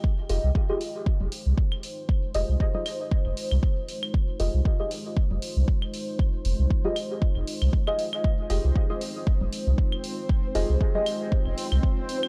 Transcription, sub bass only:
X:1
M:4/4
L:1/16
Q:"Swing 16ths" 1/4=117
K:Fm
V:1 name="Sub bass" clef=bass
z2 F,,, C,, z4 z F,,, z C,, z4 | z2 F,,, C,, z4 z F,,, z C,, z4 | z2 F,,, C,, z4 z F,,, z C,, z4 | z2 F,,, C,, z4 z F,,, z C,, z4 |
z2 F,,, C,, z4 z F,,, z C,, z4 | z2 F,,, C,, z4 z F,,, z C,, z4 |]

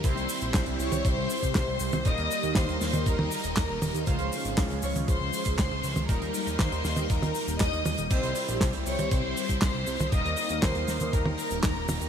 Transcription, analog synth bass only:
X:1
M:4/4
L:1/16
Q:1/4=119
K:Ebmix
V:1 name="Analog synth bass" clef=bass
C,, C,, z B,,, C,, C,, C,, C,, C,, C,, z C,, C,, C,, C,, C,, | E,,, E,, z E,, E,, E,, E,, E,, E,, E,, z E,,, E,, E,,, E,,, E,, | D,, D,, z A,,, D,, D,, D,, D,, D,, D,, z D,, D,, D,, D,, D,, | E,,, E,, z E,, E,, E,, E,, E,, E,, E,, z E,,, E,, E,, E,, E,,, |
C,, C,, z B,,, C,, C,, C,, C,, C,, C,, z C,, C,, C,, C,, C,, | E,,, E,, z E,, E,, E,, E,, E,, E,, E,, z E,,, E,, E,,, E,,, E,, |]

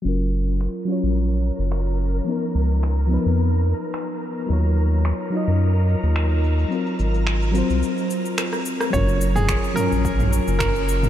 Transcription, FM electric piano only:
X:1
M:4/4
L:1/8
Q:"Swing 16ths" 1/4=108
K:F#
V:1 name="FM electric piano"
[F,CEA]3 [F,CEc]4- [F,CEc] | [E,B,DA]3 [E,B,DB]4- [E,B,DB] | [F,DEc]3 [F,DEd]4- [F,DEd] | [F,^B,EA]3 [F,B,E^B]4- [F,B,EB] |
[F,CEA]3 [F,CEc]4- [F,CEc] |]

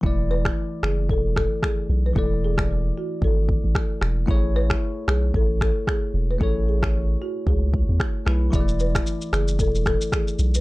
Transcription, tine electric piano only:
X:1
M:4/4
L:1/8
Q:"Swing 16ths" 1/4=113
K:Emix
V:1 name="Tine electric piano"
[E,A,Ed]8 | [E,A,Ed]8 | [A,EGc]8 | [A,EGc]6- [A,EGc] [A,EGB] |
[E,A,EGd]8 |]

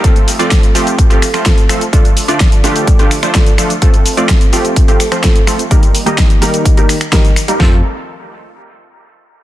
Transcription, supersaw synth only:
X:1
M:4/4
L:1/16
Q:1/4=127
K:Fmix
V:1 name="Supersaw synth"
[F,A,CFA]3 [F,A,CFd]2 z [F,A,CFG]3 [F,A,CFG] z [F,A,CFc] z2 [F,A,CFA] z | [F,A,DFA]3 [F,A,DFd]2 z [F,A,DFG]3 [F,A,DFG] z [F,A,DFc] z2 [F,A,DFA] z | [F,A,CFA]3 [F,A,CFd]2 z [F,A,CFG]3 [F,A,CFG] z [F,A,CFc] z2 [F,A,CFA] z | [G,B,EGB]3 [G,B,EGe]2 z [G,B,EGB]3 [G,B,EGB] z2 [G,B,EGB] z2 [G,B,EGB] |
[F,A,CFA]2 z12 z2 |]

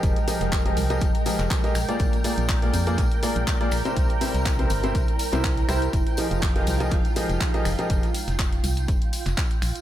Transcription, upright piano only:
X:1
M:4/4
L:1/16
Q:"Swing 16ths" 1/4=122
K:Fdor
V:1 name="Upright piano"
[F,GABe] z [F,GABe]3 [F,GABe]2 [F,GABe] z2 [F,GABe]3 [GABe] z [B,FABd]- | [B,FABd] z [B,FABd]3 [B,FABd]2 [B,FABd] z2 [B,FABd]3 [B,FABd] z [C,=EGBc]- | [C,=EGBc] z [C,EGBc]3 [C,EGBc]2 [C,EGBc] z3 [C,EGBc] z2 [EGBc]2 | z2 [F,GABe]3 [F,GABe]2 [F,GABe] z2 [F,GABe]3 [F,GABe] z [F,GABe]- |
[F,GABe] z12 z3 |]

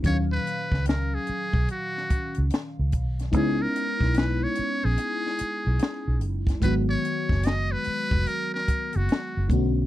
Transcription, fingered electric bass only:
X:1
M:4/4
L:1/16
Q:"Swing 16ths" 1/4=73
K:Abdor
V:1 name="Fingered electric bass" clef=bass
E,,2 z D,,3 z C,, z3 D,, z D,, C,,2 | D,,2 z C,,3 z B,,, z3 C,, z C,, G,,,2 | A,,,2 z G,,,3 z F,,, z3 G,,, z G,,, =B,,,2 |]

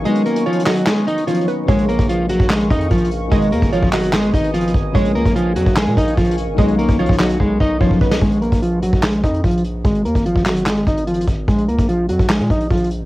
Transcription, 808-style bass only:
X:1
M:4/4
L:1/16
Q:1/4=147
K:Bbphr
V:1 name="808-style bass" clef=bass
z16 | B,,,3 B,,,4 B,,,3 F,,2 B,,,4 | A,,,2 E,, A,,,2 A,,,4- A,,, A,,,4 A,,,2 | B,,,2 D,, B,,,3 F,, B,,,2 B,, B,,,2 B,,,3 A,,, |
=B,,,3 B,,,2 B,,,3 B,,,2 B,,,2 B,,,4 | B,,,3 B,,,4 B,,,3 F,,2 B,,,4 | A,,,2 E,, A,,,2 A,,,4- A,,, A,,,4 A,,,2 | B,,,2 D,, B,,,3 F,, B,,,2 B,, B,,,2 B,,,3 A,,, |]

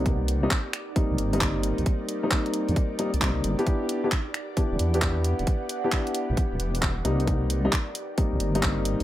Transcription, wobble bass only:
X:1
M:4/4
L:1/16
Q:"Swing 16ths" 1/4=133
K:Clyd
V:1 name="Wobble bass" clef=bass
C,,4 z4 z C,, G,,,4- G,,, C,, | z6 z =F,, z3 C,,3 G,,, z | z8 z E,,, E,,4- E,, E,,, | z6 z A,,, z D,,, E,,,4 C,,2- |
C,,4 z4 z C,, G,,,4- G,,, C,, |]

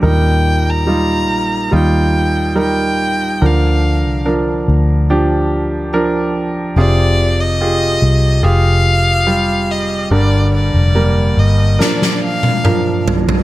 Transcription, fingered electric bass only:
X:1
M:4/4
L:1/16
Q:1/4=71
K:Eb
V:1 name="Fingered electric bass" clef=bass
E,,6 B,,,2 E,,8 | D,,3 C,,3 D,,8- D,,2 | F,,,6 C,,2 F,,,8 | G,,,3 F,,,3 G,,,2 z8 |]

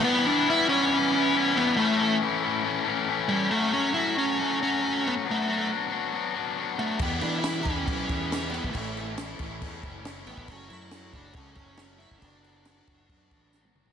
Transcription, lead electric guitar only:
X:1
M:4/4
L:1/8
Q:1/4=138
K:Edor
V:1 name="Lead electric guitar"
B, D E C4 B, | A,2 z4 z G, | A, C E C2 C2 B, | A,2 z4 z A, |
B, D E C4 B, | A,2 z4 z B, | C E2 D C C2 E | D6- D z |]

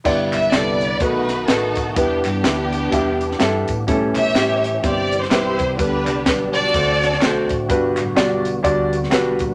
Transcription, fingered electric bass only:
X:1
M:4/4
L:1/8
Q:"Swing" 1/4=126
K:G
V:1 name="Fingered electric bass" clef=bass
G,,, B,,, C,,2 B,,,2 A,,,2 | E,, G,, D,,2 E,,2 G,, A,, | A,,, B,,, A,,,2 G,,,2 B,,, C,, | D,, C,, B,,,2 D,,2 B,,, A,,, |
G,,, A,,, B,,,2 D,,2 B,,, _B,,, |]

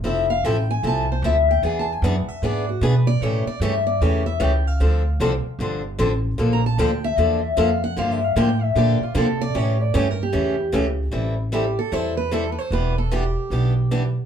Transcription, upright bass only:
X:1
M:4/4
L:1/8
Q:"Swing" 1/4=151
K:Aphr
V:1 name="Upright bass" clef=bass
F,,,2 A,,,2 C,,2 D,,2 | E,,2 ^F,, z ^G,,2 =B,,2 | A,, z G,,2 E,,2 ^C,,2 | D,,2 C,, z G,,,2 A,,,2 |
B,,,2 D,,2 E,,2 F,,2 | G,,2 A,,2 B,, z C,2 | A,,2 G,,2 E,,2 ^C,,2 | [K:Am] A,,,4 E,,4 |
E,,,4 B,,,4 |]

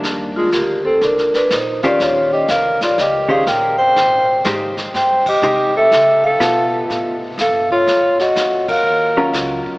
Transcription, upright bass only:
X:1
M:4/4
L:1/8
Q:"Swing" 1/4=123
K:Ablyd
V:1 name="Upright bass" clef=bass
E,,2 D,,2 C,, z B,,,2 | E,,2 C,,2 _D,,2 B,,,2 | A,,,2 A,,2 G,,2 C,2 | _D,2 _C,2 =A,,2 G,,2 |
_G,,2 F,,2 E,,2 _D,, z |]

